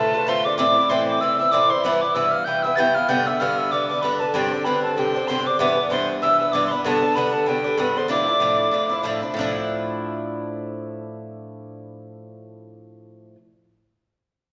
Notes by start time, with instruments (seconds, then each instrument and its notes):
Already playing: bouzouki A2 D3 A3 F4, marimba A4, flute A4, tin whistle A5
0.14 bouzouki D3 A3 F4, flute B4, marimba B4
0.27 bouzouki A2 D3 A3 F4, flute C5, marimba C5, tin whistle C6
0.45 bouzouki D3 A3 F4, marimba D5, flute D5, tin whistle D6
0.58 bouzouki A2 E3 C4 E4, flute D5, marimba D5, tin whistle D6
0.76 bouzouki E3 C4 E4
0.89 bouzouki A2 E3 C4 E4, flute C5, marimba C5, tin whistle C6
1.07 marimba D5, tin whistle D6
1.21 bouzouki A2 E3 C4 E4, flute E5, marimba E5, tin whistle E6
1.39 bouzouki E3 C4 E4, flute E5, marimba E5, tin whistle E6
1.51 bouzouki A2 E3 C4 E4, flute D5, marimba D5, tin whistle D6
1.70 bouzouki E3 C4 E4, marimba C5, flute C5, tin whistle C6
1.83 bouzouki G2 E3 B3 E4, flute B4, marimba B4, tin whistle B5
2.01 bouzouki E3 B3 E4, marimba D5, tin whistle D6
2.14 bouzouki G2 E3 B3 E4, marimba E5, flute E5, tin whistle E6
2.31 flute F5, tin whistle F6
2.44 bouzouki G2 E3 B3, marimba G5, flute G5, tin whistle G6
2.49 bouzouki E4
2.62 bouzouki B3 E4, marimba E5, tin whistle E6
2.67 bouzouki E3
2.75 bouzouki G2 E3 B3 E4, marimba G5, flute G5, tin whistle A6
2.80 tin whistle G6
2.94 bouzouki E3 B3 E4, flute F5, marimba F5, tin whistle F6
3.08 bouzouki G2 D3 B3 D4, marimba G5, flute G5, tin whistle G6
3.26 bouzouki D3 B3 D4, marimba E5, flute E5, tin whistle E6
3.40 bouzouki G2 D3 B3 D4, flute F5, tin whistle F6
3.58 flute E5, tin whistle E6
3.71 bouzouki G2 D3 B3 D4, flute D5, marimba D5, tin whistle D6
3.88 bouzouki B3 D4, flute D5, marimba D5, tin whistle D6
3.92 bouzouki D3
4.01 bouzouki G2 D3 B3 D4, flute B4, marimba B4, tin whistle B5
4.20 bouzouki D3 B3 D4, marimba A4, flute A4, tin whistle A5
4.33 bouzouki G2 D3 C4 D4, marimba G4, flute G4, tin whistle G5 A5
4.51 bouzouki D3 C4 D4
4.64 bouzouki G2 D3 C4 D4, marimba B4, flute B4, tin whistle B5
4.83 marimba A4, flute A4, tin whistle A5
4.95 bouzouki G2 D3 C4, marimba G4, flute G4, tin whistle A5
4.99 bouzouki D4, tin whistle G5
5.14 bouzouki D3 C4 D4
5.27 bouzouki G2 D3 C4 D4, marimba C5, flute C5, tin whistle C6
5.46 bouzouki D3 C4 D4, marimba D5, tin whistle D6
5.59 bouzouki G2 E3 B3 D4, flute D5, tin whistle D6
5.77 bouzouki E3 B3 D4
5.90 bouzouki G2 E3 B3 D4, flute C5, marimba C5, tin whistle C6
6.22 bouzouki G2 E3 B3 D4, flute E5, marimba E5, tin whistle E6
6.39 bouzouki E3 B3 D4, marimba E5, tin whistle E6
6.52 bouzouki G2 E3 B3 D4, flute D5, marimba D5, tin whistle D6
6.66 tin whistle B5 C6
6.71 bouzouki E3 B3 D4, flute B4, marimba B4
6.84 bouzouki G2 D3 B3 D4, flute A4, marimba A4, tin whistle A5 B5
7.02 bouzouki D3 B3 D4
7.15 bouzouki G2 D3 B3 D4, flute B4, marimba B4, tin whistle B5
7.33 flute A4, marimba A4, tin whistle A5
7.46 bouzouki G2 D3 B3 D4, flute G4, marimba G4, tin whistle G5
7.64 bouzouki D3 B3 D4, marimba A4
7.78 bouzouki G2 D3 B3 D4, marimba B4, flute B4, tin whistle B5
7.96 bouzouki D3 B3 D4, marimba C5, flute C5, tin whistle C6
8.08 bouzouki A2 F3 D4 E4, marimba D5, flute D5, tin whistle D6
8.27 bouzouki F3 D4 E4
8.40 bouzouki A2 F3 D4 E4
8.71 bouzouki A2 F3 D4 E4
8.89 bouzouki F3 D4 E4
9.04 bouzouki A2 F3 D4 E4
9.21 bouzouki F3 D4 E4
9.34 bouzouki A2 F3
9.39 bouzouki D4 E4